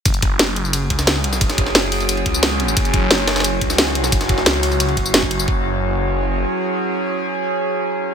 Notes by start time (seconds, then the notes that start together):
0.05 F#1 F#3 C#4 G#4, kick, closed hi-hat, ride, tambourine
0.14 closed hi-hat, tambourine
0.22 kick, closed hi-hat, ride
0.39 F#1, snare, closed hi-hat, ride, tambourine
0.56 closed hi-hat, ride
0.65 tambourine
0.73 closed hi-hat, ride, tambourine
0.90 C#2, kick, closed hi-hat, ride
0.99 snare, tambourine
1.07 snare, closed hi-hat, ride, tambourine
1.16 snare
1.24 closed hi-hat, ride
1.33 snare, tambourine
1.41 F#1, kick, closed hi-hat, ride, tambourine
1.50 snare, closed hi-hat, tambourine
1.58 kick, closed hi-hat, ride
1.66 snare
1.75 F#1, snare, closed hi-hat, ride, tambourine
1.92 closed hi-hat, open hi-hat
2.00 ride, tambourine
2.09 closed hi-hat, ride, tambourine
2.17 ride
2.26 C#2, kick, closed hi-hat, ride
2.34 tambourine
2.43 snare, closed hi-hat, ride, tambourine
2.60 closed hi-hat, ride
2.68 tambourine
2.77 F#1 F#4, kick, closed hi-hat, ride, tambourine
2.85 closed hi-hat, tambourine
2.94 kick, closed hi-hat, ride
3.11 F#1, snare, closed hi-hat, ride, tambourine
3.28 snare, closed hi-hat, ride
3.36 snare, ride, tambourine
3.40 snare, ride
3.44 closed hi-hat, ride, tambourine
3.61 C#2, kick, closed hi-hat, ride
3.70 snare, tambourine
3.78 snare, closed hi-hat, ride, tambourine
3.87 snare
3.95 closed hi-hat, ride
4.04 snare, tambourine
4.12 F#1, kick, closed hi-hat, ride, tambourine
4.21 snare, closed hi-hat, tambourine
4.29 kick, closed hi-hat, ride
4.38 snare
4.46 C#2, snare, closed hi-hat, ride, tambourine
4.63 open hi-hat
4.72 ride, tambourine
4.80 closed hi-hat, ride, tambourine
4.89 ride
4.97 F#1, kick, closed hi-hat, ride
5.06 tambourine
5.14 snare, closed hi-hat, ride, tambourine
5.22 kick
5.31 closed hi-hat, ride
5.39 tambourine
5.48 F#1 F#3 C#4 G#4, kick